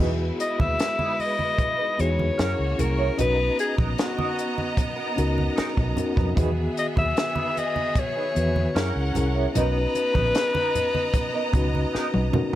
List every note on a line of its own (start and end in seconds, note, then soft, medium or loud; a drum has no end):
0.00 0.30 E2 medium
0.00 2.35 G#3 medium
0.00 1.24 B3 medium
0.00 0.11 D#4 medium
0.00 1.25 E4 medium
0.00 2.35 E4 medium
0.00 1.25 F#4 medium
0.00 0.12 G#4 medium
0.00 1.26 G#4 medium
0.00 2.35 B4 medium
0.00 0.12 B4 medium
0.00 low conga medium
0.38 0.58 D#5 medium
0.38 muted clean electric guitar stroke soft
0.38 closed hi-hat medium
0.59 0.75 D#2 medium
0.59 0.70 D#4 soft
0.59 0.69 G#4 soft
0.59 0.69 B4 soft
0.59 1.22 E5 loud
0.59 kick medium
0.59 high conga medium
0.79 muted clean electric guitar stroke soft
0.79 snare medium
0.79 closed hi-hat medium
0.79 muted conga soft
0.99 1.13 D#4 medium
0.99 1.12 G#4 medium
0.99 1.12 B4 medium
0.99 high conga medium
1.19 2.02 D#5 loud
1.19 muted clean electric guitar stroke soft
1.19 open hi-hat soft
1.19 muted conga soft
1.39 muted clean electric guitar stroke soft
1.39 high conga medium
1.58 muted clean electric guitar stroke soft
1.58 kick medium
1.58 closed hi-hat medium
1.79 1.92 D#4 medium
1.79 1.92 G#4 medium
1.79 1.91 B4 medium
1.98 2.29 E2 medium
1.98 2.38 B3 medium
1.98 2.38 D#4 medium
1.98 2.39 F#4 medium
1.98 2.38 G#4 medium
1.98 2.81 C#5 medium
1.98 muted clean electric guitar stroke soft
1.98 closed hi-hat medium
2.19 muted clean electric guitar stroke soft
2.19 high conga medium
2.38 2.54 F#2 medium
2.38 3.17 A#3 medium
2.38 2.70 C#4 medium
2.38 2.51 C#4 medium
2.38 2.70 E4 medium
2.38 2.51 E4 medium
2.38 3.17 F#4 medium
2.38 2.71 G#4 medium
2.38 2.52 A#4 medium
2.38 2.72 A#4 medium
2.38 3.17 C#5 medium
2.38 snare medium
2.38 closed hi-hat medium
2.38 muted conga soft
2.59 2.74 C#2 medium
2.77 3.09 C2 medium
2.77 3.09 C#4 medium
2.77 3.10 E4 medium
2.77 3.10 G#4 medium
2.77 3.19 A#4 medium
2.77 3.11 A#4 medium
2.77 muted clean electric guitar stroke soft
2.77 closed hi-hat medium
2.77 muted conga soft
2.77 low conga medium
2.98 3.09 C#4 soft
2.98 3.09 E4 soft
2.98 3.08 C#5 soft
3.17 3.49 B1 medium
3.17 6.33 B3 medium
3.17 4.43 C#4 medium
3.17 3.31 D#4 medium
3.17 4.44 D#4 medium
3.17 3.31 F#4 medium
3.17 4.44 F#4 medium
3.17 3.32 A#4 medium
3.17 3.56 B4 medium
3.17 4.45 B4 medium
3.17 6.33 D#5 medium
3.17 6.33 A#5 medium
3.17 closed hi-hat medium
3.17 muted conga soft
3.17 low conga medium
3.58 3.76 G#4 medium
3.58 muted clean electric guitar stroke soft
3.58 closed hi-hat medium
3.77 3.93 A#1 medium
3.77 3.88 D#4 soft
3.77 3.88 F#4 soft
3.77 3.87 A#4 soft
3.77 kick medium
3.77 high conga medium
3.98 4.74 F#4 medium
3.98 muted clean electric guitar stroke soft
3.98 snare medium
3.98 closed hi-hat medium
4.16 4.31 D#4 medium
4.16 4.30 F#4 medium
4.16 4.30 A#4 medium
4.16 high conga medium
4.36 muted clean electric guitar stroke soft
4.36 closed hi-hat medium
4.56 muted clean electric guitar stroke soft
4.56 high conga medium
4.76 muted clean electric guitar stroke soft
4.76 kick medium
4.76 closed hi-hat medium
4.96 5.10 D#4 medium
4.96 5.10 F#4 medium
4.96 5.09 A#4 medium
5.16 5.48 C#2 medium
5.16 5.79 C#4 medium
5.16 5.80 D#4 medium
5.16 5.81 F#4 medium
5.16 5.81 A#4 medium
5.16 muted clean electric guitar stroke soft
5.16 closed hi-hat medium
5.16 muted conga soft
5.36 muted clean electric guitar stroke soft
5.36 high conga medium
5.56 5.69 D#4 medium
5.56 5.70 F#4 medium
5.56 5.70 A#4 medium
5.56 muted fingered electric bass stroke soft
5.56 snare medium
5.56 closed hi-hat medium
5.56 muted conga soft
5.77 5.92 B1 medium
5.77 kick medium
5.96 6.28 C#4 medium
5.96 6.29 D#4 medium
5.96 6.29 F#4 medium
5.96 6.30 A#4 medium
5.96 muted clean electric guitar stroke soft
5.96 closed hi-hat medium
5.96 muted conga soft
5.96 low conga medium
6.16 6.32 F2 medium
6.16 6.27 D#4 soft
6.16 6.27 F#4 medium
6.16 6.26 B4 medium
6.16 kick medium
6.35 6.67 E2 medium
6.35 7.62 D#3 medium
6.35 7.62 B3 medium
6.35 8.71 B3 medium
6.35 6.49 D#4 medium
6.35 7.63 F#4 medium
6.35 6.49 G#4 medium
6.35 8.71 G#4 medium
6.35 7.63 G#4 medium
6.35 6.50 B4 medium
6.35 8.71 E5 medium
6.35 kick loud
6.35 closed hi-hat medium
6.35 muted conga soft
6.35 low conga medium
6.76 6.87 D#5 medium
6.76 muted clean electric guitar stroke soft
6.76 closed hi-hat medium
6.96 7.12 D#2 medium
6.96 7.07 D#4 soft
6.96 7.06 G#4 soft
6.96 7.06 B4 soft
6.96 7.60 E5 medium
6.96 kick medium
6.96 high conga medium
7.16 muted clean electric guitar stroke soft
7.16 snare medium
7.16 closed hi-hat medium
7.35 7.49 D#4 soft
7.35 7.49 G#4 medium
7.35 7.48 B4 medium
7.35 high conga medium
7.57 8.01 D#5 medium
7.57 closed hi-hat medium
7.57 muted conga soft
7.76 muted clean electric guitar stroke soft
7.76 high conga medium
7.95 9.17 C#5 medium
7.95 muted clean electric guitar stroke soft
7.95 kick medium
7.95 closed hi-hat medium
8.15 8.29 D#4 soft
8.15 8.28 G#4 medium
8.15 8.28 B4 medium
8.35 8.66 E2 medium
8.35 8.76 D#3 medium
8.35 8.75 B3 medium
8.35 8.76 F#4 medium
8.35 8.77 B4 medium
8.35 muted clean electric guitar stroke soft
8.35 closed hi-hat medium
8.55 muted clean electric guitar stroke soft
8.55 high conga medium
8.75 8.90 F#2 medium
8.75 9.07 C#4 medium
8.75 9.53 C#4 medium
8.75 8.88 C#4 medium
8.75 9.07 E4 medium
8.75 8.88 E4 medium
8.75 9.08 G#4 medium
8.75 9.53 A#4 medium
8.75 8.89 A#4 medium
8.75 9.08 A#4 medium
8.75 9.53 F#5 medium
8.75 snare medium
8.75 closed hi-hat medium
8.96 9.10 C#2 medium
9.14 9.45 C2 medium
9.14 9.46 C#4 medium
9.14 9.46 E4 medium
9.14 9.47 G#4 medium
9.14 9.48 A#4 medium
9.14 muted clean electric guitar stroke soft
9.14 closed hi-hat medium
9.14 muted conga soft
9.14 low conga medium
9.35 9.46 C#4 soft
9.35 9.45 E4 soft
9.35 9.45 C#5 soft
9.54 9.85 B1 medium
9.54 12.55 B3 medium
9.54 9.68 B3 medium
9.54 10.80 C#4 medium
9.54 10.80 D#4 medium
9.54 9.68 D#4 medium
9.54 10.81 F#4 medium
9.54 9.68 A#4 medium
9.54 11.91 B4 loud
9.54 10.81 B4 medium
9.54 12.55 D#5 medium
9.54 12.55 A#5 medium
9.54 closed hi-hat medium
9.54 muted conga soft
9.54 low conga medium
9.94 muted clean electric guitar stroke soft
9.94 closed hi-hat medium
9.94 muted conga soft
10.14 10.30 A#1 medium
10.14 10.25 B3 soft
10.14 10.25 D#4 soft
10.14 10.24 A#4 soft
10.14 kick medium
10.14 high conga medium
10.35 snare medium
10.35 closed hi-hat medium
10.53 10.68 B3 medium
10.53 10.67 D#4 medium
10.53 10.66 A#4 medium
10.53 high conga medium
10.75 closed hi-hat medium
10.75 low conga medium
10.93 muted clean electric guitar stroke soft
10.93 high conga medium
11.13 muted clean electric guitar stroke soft
11.13 kick medium
11.13 closed hi-hat medium
11.13 muted conga soft
11.33 11.47 B3 soft
11.33 11.47 D#4 medium
11.33 11.46 A#4 medium
11.53 11.84 C#2 medium
11.53 12.16 C#4 medium
11.53 12.16 D#4 medium
11.53 12.17 F#4 medium
11.53 12.18 B4 medium
11.53 muted clean electric guitar stroke soft
11.53 kick medium
11.53 closed hi-hat medium
11.53 muted conga soft
11.74 muted clean electric guitar stroke soft
11.74 high conga medium
11.93 12.06 B3 medium
11.93 12.06 D#4 medium
11.93 12.07 A#4 medium
11.93 muted fingered electric bass stroke soft
11.93 snare soft
12.14 12.29 B1 medium
12.14 high tom medium
12.32 12.55 C#4 medium
12.32 12.55 D#4 medium
12.32 12.55 F#4 medium
12.32 12.55 A#4 medium
12.32 muted clean electric guitar stroke soft
12.32 mid tom medium
12.32 muted conga soft
12.32 high conga soft
12.32 low conga medium